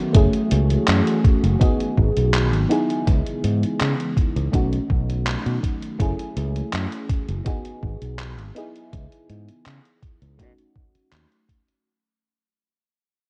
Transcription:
0.00 0.13 D#3 medium
0.00 0.13 F#3 medium
0.00 0.13 A3 medium
0.00 0.13 B3 medium
0.00 0.14 C#4 medium
0.00 0.17 D#4 medium
0.00 0.13 F#4 medium
0.00 0.16 F#4 medium
0.13 0.27 F#1 medium
0.13 1.60 E3 medium
0.13 1.53 A3 medium
0.13 1.59 A3 medium
0.13 1.54 C#4 medium
0.13 1.60 C#4 medium
0.13 1.54 E4 medium
0.13 2.68 F#4 medium
0.13 2.68 G#4 medium
0.13 1.55 G#4 medium
0.13 kick loud
0.13 closed hi-hat loud
0.33 closed hi-hat soft
0.51 0.76 C#2 medium
0.51 closed hi-hat medium
0.70 closed hi-hat soft
0.88 1.00 F#2 medium
0.88 clap loud
0.88 closed hi-hat medium
1.07 closed hi-hat soft
1.24 kick loud
1.24 closed hi-hat medium
1.44 1.55 F#1 loud
1.44 closed hi-hat soft
1.60 2.69 D#3 medium
1.60 2.69 F#3 medium
1.60 2.63 B3 medium
1.60 2.69 B3 medium
1.60 2.63 D#4 medium
1.60 2.64 F#4 medium
1.60 2.64 G#4 medium
1.60 kick loud
1.60 closed hi-hat medium
1.80 closed hi-hat soft
1.98 2.10 G#1 loud
1.98 kick medium
2.17 2.53 B1 medium
2.17 closed hi-hat soft
2.34 clap loud
2.34 closed hi-hat medium
2.53 2.65 G#1 loud
2.53 closed hi-hat soft
2.69 4.52 C#3 medium
2.69 4.52 E3 medium
2.69 4.52 G#3 medium
2.69 4.46 B3 medium
2.69 5.97 B3 medium
2.69 4.46 D#4 medium
2.69 4.47 E4 medium
2.69 4.47 G#4 loud
2.69 closed hi-hat medium
2.90 closed hi-hat soft
3.07 3.20 C#2 medium
3.07 kick loud
3.07 closed hi-hat medium
3.26 closed hi-hat soft
3.44 3.63 G#2 medium
3.44 closed hi-hat medium
3.63 muted fingered electric bass stroke soft
3.63 closed hi-hat soft
3.81 3.93 C#3 medium
3.81 clap loud
3.81 closed hi-hat medium
4.00 closed hi-hat soft
4.17 kick loud
4.17 closed hi-hat medium
4.36 4.48 C#2 medium
4.36 closed hi-hat soft
4.52 4.78 B1 loud
4.52 5.98 D#3 medium
4.52 5.98 F#3 medium
4.52 5.92 A3 medium
4.52 7.43 A3 medium
4.52 5.92 C#4 medium
4.52 5.93 D#4 medium
4.52 5.98 F#4 medium
4.52 5.94 F#4 medium
4.52 kick loud
4.52 closed hi-hat medium
4.73 closed hi-hat soft
4.90 5.35 B1 medium
4.90 kick loud
5.10 closed hi-hat soft
5.27 clap loud
5.27 closed hi-hat medium
5.46 5.57 B2 medium
5.46 closed hi-hat soft
5.63 kick medium
5.63 closed hi-hat medium
5.82 closed hi-hat soft
5.99 6.12 F#1 medium
5.99 7.45 E3 medium
5.99 7.39 A3 medium
5.99 7.39 C#4 medium
5.99 7.45 C#4 medium
5.99 7.40 E4 medium
5.99 8.53 F#4 medium
5.99 10.35 G#4 medium
5.99 7.40 G#4 medium
5.99 kick loud
5.99 closed hi-hat medium
6.19 closed hi-hat soft
6.37 6.61 C#2 medium
6.37 closed hi-hat medium
6.56 closed hi-hat soft
6.73 6.86 F#2 medium
6.73 clap loud
6.73 closed hi-hat medium
6.92 closed hi-hat soft
7.10 kick loud
7.10 closed hi-hat medium
7.29 7.40 F#1 medium
7.29 closed hi-hat soft
7.45 8.55 D#3 medium
7.45 8.55 F#3 medium
7.45 8.48 B3 medium
7.45 8.54 B3 medium
7.45 8.49 D#4 medium
7.45 8.49 F#4 medium
7.45 8.50 G#4 medium
7.45 kick loud
7.45 closed hi-hat medium
7.65 closed hi-hat soft
7.83 7.95 G#1 medium
7.83 kick medium
8.02 8.39 B1 medium
8.02 closed hi-hat soft
8.19 clap loud
8.19 closed hi-hat medium
8.39 8.50 G#1 medium
8.39 closed hi-hat soft
8.55 10.37 C#3 medium
8.55 10.37 E3 medium
8.55 10.31 B3 medium
8.55 11.82 B3 medium
8.55 10.32 D#4 medium
8.55 10.32 E4 medium
8.55 10.33 G#4 loud
8.55 closed hi-hat medium
8.75 closed hi-hat soft
8.93 9.05 C#2 medium
8.93 kick loud
8.93 closed hi-hat medium
9.12 closed hi-hat soft
9.29 9.48 G#2 medium
9.29 closed hi-hat medium
9.48 muted fingered electric bass stroke soft
9.48 closed hi-hat soft
9.66 9.78 C#3 medium
9.66 clap loud
9.66 closed hi-hat medium
9.85 closed hi-hat soft
10.02 kick loud
10.02 closed hi-hat medium
10.22 10.41 C#2 medium
10.22 closed hi-hat soft
10.38 10.51 B2 medium
10.38 11.84 F#3 medium
10.38 11.78 A3 medium
10.38 11.84 A3 medium
10.38 11.78 C#4 medium
10.38 11.79 D#4 medium
10.38 11.79 F#4 medium
10.38 kick loud
10.38 closed hi-hat medium
10.58 closed hi-hat soft
10.76 kick loud
10.95 muted fingered electric bass stroke soft
10.95 closed hi-hat soft
11.12 11.24 D#2 medium
11.12 clap loud
11.12 closed hi-hat medium
11.32 closed hi-hat soft
11.49 kick medium
11.49 closed hi-hat medium
11.68 closed hi-hat soft

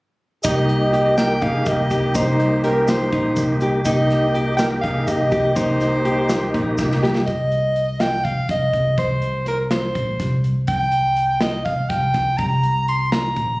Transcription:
0.43 1.38 C2 medium
0.43 3.82 A#3 medium
0.43 0.84 D#4 medium
0.43 3.82 D#4 medium
0.43 1.14 G4 medium
0.43 3.82 G4 medium
0.43 1.13 D#5 loud
0.43 kick medium
0.43 closed hi-hat medium
0.43 shaker medium
0.69 closed hi-hat medium
0.93 1.33 G4 medium
0.93 closed hi-hat medium
1.17 1.44 A#4 medium
1.17 1.44 G5 loud
1.17 snare medium
1.17 closed hi-hat medium
1.17 shaker soft
1.42 1.53 C2 medium
1.42 1.82 D#4 medium
1.42 1.69 G#4 medium
1.42 1.70 F5 medium
1.42 kick medium
1.42 closed hi-hat medium
1.66 1.89 C2 medium
1.66 2.18 G4 medium
1.66 2.17 D#5 medium
1.66 kick loud
1.66 closed hi-hat medium
1.66 shaker soft
1.90 2.13 C2 medium
1.90 2.11 G4 medium
1.90 kick medium
1.90 closed hi-hat medium
1.90 shaker soft
2.15 3.09 C2 medium
2.15 2.54 D#4 medium
2.15 2.64 D#4 medium
2.15 2.64 C5 medium
2.15 kick loud
2.15 closed hi-hat medium
2.15 shaker medium
2.40 closed hi-hat medium
2.64 2.87 C#4 medium
2.64 3.03 G4 medium
2.64 2.87 A#4 medium
2.64 snare soft
2.64 closed hi-hat medium
2.88 3.58 D#4 medium
2.88 3.58 C5 medium
2.88 snare medium
2.88 closed hi-hat medium
2.88 shaker soft
3.12 3.35 A#1 medium
3.12 3.52 D#4 medium
3.12 kick medium
3.12 closed hi-hat soft
3.36 3.82 C2 medium
3.36 kick loud
3.36 closed hi-hat medium
3.36 shaker soft
3.61 3.82 G4 medium
3.61 closed hi-hat medium
3.61 shaker soft
3.85 4.79 C2 medium
3.85 7.23 A#3 medium
3.85 7.22 D#4 medium
3.85 4.26 D#4 medium
3.85 4.54 G4 medium
3.85 7.23 G4 medium
3.85 4.54 D#5 medium
3.85 kick loud
3.85 closed hi-hat medium
3.85 shaker medium
4.10 snare soft
4.10 closed hi-hat medium
4.34 4.74 G4 medium
4.34 closed hi-hat medium
4.57 4.70 A#4 medium
4.57 4.68 G5 loud
4.57 snare loud
4.57 closed hi-hat medium
4.57 shaker soft
4.81 4.95 C2 medium
4.81 5.23 D#4 medium
4.81 5.09 G#4 medium
4.81 5.08 F5 medium
4.81 kick medium
4.81 closed hi-hat medium
5.07 5.30 C2 medium
5.07 5.59 G4 medium
5.07 5.58 D#5 loud
5.07 kick loud
5.07 closed hi-hat medium
5.07 shaker soft
5.32 5.54 C2 medium
5.32 5.52 G4 medium
5.32 kick medium
5.32 closed hi-hat medium
5.32 shaker soft
5.56 6.50 C2 medium
5.56 5.96 D#4 medium
5.56 6.79 D#4 medium
5.56 6.78 C5 medium
5.56 kick medium
5.56 closed hi-hat medium
5.56 shaker medium
5.80 snare soft
5.80 closed hi-hat medium
5.80 shaker soft
6.05 6.45 G4 medium
6.05 closed hi-hat medium
6.29 snare loud
6.29 closed hi-hat medium
6.29 shaker soft
6.54 6.76 A#1 medium
6.54 6.94 D#4 medium
6.54 kick medium
6.54 closed hi-hat medium
6.78 7.23 C2 medium
6.78 kick loud
6.78 snare medium
6.78 shaker soft
6.91 snare medium
7.03 7.23 G4 medium
7.03 snare medium
7.15 snare medium
7.27 8.21 C2 medium
7.27 8.02 D#5 medium
7.27 kick medium
7.27 closed hi-hat medium
7.52 closed hi-hat soft
7.76 closed hi-hat medium
8.00 8.26 G5 medium
8.00 snare medium
8.00 closed hi-hat medium
8.24 8.36 C2 medium
8.24 8.49 F5 medium
8.24 kick medium
8.24 closed hi-hat soft
8.49 8.71 C2 medium
8.49 8.95 D#5 medium
8.49 kick medium
8.49 closed hi-hat medium
8.73 8.95 C2 medium
8.73 kick medium
8.73 closed hi-hat soft
8.98 9.91 C2 medium
8.98 9.44 C5 medium
8.98 kick medium
8.98 closed hi-hat medium
9.22 closed hi-hat medium
9.46 9.59 A#4 medium
9.46 snare soft
9.46 closed hi-hat medium
9.71 10.40 C5 medium
9.71 snare medium
9.71 closed hi-hat medium
9.95 10.17 A#1 medium
9.95 kick medium
9.95 closed hi-hat medium
10.20 10.64 C2 medium
10.20 kick medium
10.20 snare soft
10.20 closed hi-hat medium
10.44 closed hi-hat soft
10.67 11.62 C2 medium
10.67 11.37 G5 medium
10.67 kick medium
10.67 closed hi-hat medium
10.92 closed hi-hat medium
11.17 closed hi-hat medium
11.41 11.64 D#5 medium
11.41 snare medium
11.41 closed hi-hat medium
11.65 11.77 C2 medium
11.65 11.91 F5 medium
11.65 kick medium
11.65 closed hi-hat soft
11.89 12.12 C2 medium
11.89 12.39 G5 medium
11.89 kick medium
11.89 closed hi-hat medium
12.14 12.37 C2 medium
12.14 kick medium
12.14 snare soft
12.14 closed hi-hat soft
12.37 13.32 C2 medium
12.37 12.87 A#5 medium
12.37 kick medium
12.37 closed hi-hat medium
12.63 closed hi-hat soft
12.88 13.11 C6 medium
12.88 closed hi-hat medium
13.12 13.60 A#5 medium
13.12 snare medium
13.12 closed hi-hat medium
13.36 13.58 A#1 medium
13.36 kick medium
13.36 closed hi-hat medium

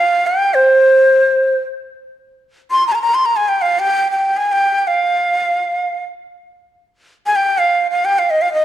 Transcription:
0.00 0.28 F5 medium
0.27 0.56 G5 medium
0.54 1.60 C5 medium
2.71 2.87 C6 medium
2.87 2.93 A#5 medium
2.92 2.96 G#5 medium
2.92 3.01 A#5 medium
3.02 3.16 A#5 medium
3.14 3.27 C6 medium
3.26 3.38 A#5 medium
3.36 3.50 G#5 medium
3.48 3.63 G5 medium
3.62 3.81 F5 medium
3.79 4.11 G5 medium
4.11 4.38 G5 medium
4.37 4.53 G#5 medium
4.52 4.89 G5 medium
4.87 6.03 F5 medium
7.26 7.37 G#5 medium
7.36 7.60 G5 medium
7.58 7.88 F5 medium
7.91 8.06 F5 medium
8.05 8.20 G5 medium
8.19 8.32 F5 medium
8.30 8.43 D#5 medium
8.42 8.52 F5 medium
8.53 8.65 D#5 medium

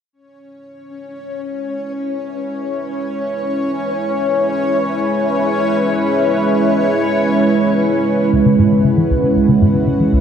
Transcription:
0.13 10.21 G#3 medium
0.13 8.34 C#4 medium
0.13 8.34 C#5 medium
0.18 10.21 C#4 medium
0.18 10.21 E4 medium
0.37 10.21 B4 medium
0.37 9.37 C#5 medium
8.33 8.43 C#2 medium
8.33 10.21 F#4 medium
8.33 10.21 F#5 medium
8.46 8.56 C#3 loud
8.59 8.69 G#2 loud
8.72 8.83 C#3 medium
8.85 8.90 C#3 medium
8.98 9.07 E3 medium
9.09 9.16 C#2 medium
9.09 10.21 E5 medium
9.24 9.33 C#3 medium
9.36 9.46 C#2 medium
9.49 9.58 C#3 loud
9.62 9.71 G#2 loud
9.75 9.86 C#3 medium
9.87 9.93 C#3 medium
10.00 10.10 E3 medium
10.13 10.19 C#2 medium

